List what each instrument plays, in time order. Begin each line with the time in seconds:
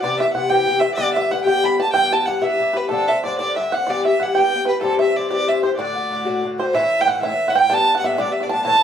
0.02 bouzouki C3 E3 B3 G4, violin D5, five-string banjo D5
0.20 bouzouki E3 B3 G4, violin E5, five-string banjo E5
0.34 bouzouki C3 E3 B3 G4, violin F#5, five-string banjo F#5
0.49 bouzouki C3 E3 B3 G4, violin G5, five-string banjo G5
0.67 bouzouki C3 E3 B3 G4
0.80 bouzouki G4, violin E5, five-string banjo E5
0.84 bouzouki E3 B3
0.96 bouzouki G2 D3 B3 G4, violin D5, five-string banjo D5
1.14 bouzouki D3 B3 G4, violin E5, five-string banjo E5
1.30 bouzouki G2 D3 B3 G4, five-string banjo F#5, violin F#5
1.45 bouzouki G2 D3 B3 G4, violin G5, five-string banjo G5
1.63 bouzouki G2 D3 B3 G4, five-string banjo B5, violin B5
1.79 bouzouki D3 B3 G4, five-string banjo A5, violin A5
1.94 bouzouki G2 E3 B3 G4, five-string banjo G5, violin G5
2.11 bouzouki E3 B3 G4, five-string banjo A5, violin A5
2.26 bouzouki G2 E3 B3 G4, violin F#5, five-string banjo F#5
2.41 bouzouki G2 E3 B3 G4, five-string banjo E5, violin E5
2.58 bouzouki G2 E3 B3 G4
2.73 bouzouki E3 B3 G4, five-string banjo B4, violin B4
2.89 bouzouki G2 D3 C4 D4, five-string banjo A4, violin A4
3.08 bouzouki C4 D4, violin E5, five-string banjo E5
3.12 bouzouki D3
3.24 bouzouki G2 D3 C4 D4, five-string banjo D5, violin D5
3.39 bouzouki G2 D3 C4 D4, five-string banjo D5, violin D5
3.56 bouzouki G2 D3 C4 D4, five-string banjo E5, violin E5
3.72 bouzouki D3 C4 D4, five-string banjo F#5, violin F#5
3.87 bouzouki G2 E3 B3 G4, five-string banjo D5, violin D5
4.05 bouzouki B3 G4, five-string banjo E5, violin E5
4.09 bouzouki E3
4.20 bouzouki G2 E3 B3, five-string banjo F#5, violin F#5
4.24 bouzouki G4
4.35 bouzouki G2 E3 B3 G4, five-string banjo G5, violin G5
4.54 bouzouki G2 E3 B3 G4
4.65 bouzouki G4, five-string banjo B4, violin B4
4.70 bouzouki E3 B3
4.81 bouzouki G2 E3 C4 G4, five-string banjo A4, violin A4
4.99 bouzouki C4 G4, five-string banjo E5, violin E5
5.04 bouzouki E3
5.15 bouzouki G2 E3 C4 G4, violin D5
5.31 bouzouki G2 E3 C4 G4, five-string banjo D5, violin D5
5.48 bouzouki G2 E3 C4 G4, five-string banjo E5, violin E5
5.62 bouzouki E3 C4 G4, five-string banjo C5, violin C5
5.78 bouzouki A2 D3 A3 F#4, violin D5, five-string banjo D5
5.95 bouzouki D3 A3 F#4
6.10 bouzouki A2 D3 A3 F#4
6.25 bouzouki A2 D3 A3 F#4
6.43 bouzouki A2 D3 A3 F#4
6.58 bouzouki D3 A3 F#4, violin C5, five-string banjo C5
6.73 bouzouki A2 E3 C#4 E4, violin E5, five-string banjo E5
6.82 bouzouki E3 C#4 E4
6.99 bouzouki E3 C#4 E4, violin G5, five-string banjo G5
7.06 bouzouki A2 E3 C#4 E4, five-string banjo F#5, violin F#5
7.21 bouzouki A2 E3 C#4 E4, five-string banjo E5, violin E5
7.30 bouzouki E3 C#4 E4
7.47 bouzouki E3 C#4 E4, five-string banjo F#5, violin F#5
7.54 bouzouki A2 E3 C#4 E4, five-string banjo G5
7.59 violin G5
7.70 bouzouki A2 G3 B3 D4, five-string banjo A5, violin A5
7.78 bouzouki G3 B3 D4
7.94 bouzouki G3 B3 D4, five-string banjo F#5
7.99 bouzouki A2, violin F#5
8.03 bouzouki G3 B3 D4, five-string banjo E5, violin E5
8.17 bouzouki A2 G3 B3 D4, five-string banjo D5, violin D5
8.27 bouzouki G3 B3 D4
8.32 violin E5
8.40 bouzouki D4, five-string banjo D5, violin D5
8.45 bouzouki G3 B3
8.49 bouzouki A2 G3, five-string banjo A5, violin A5
8.54 bouzouki B3 D4
8.65 bouzouki A2 E3 C#4 E4, five-string banjo A5, violin A5
8.75 bouzouki E3 C#4 E4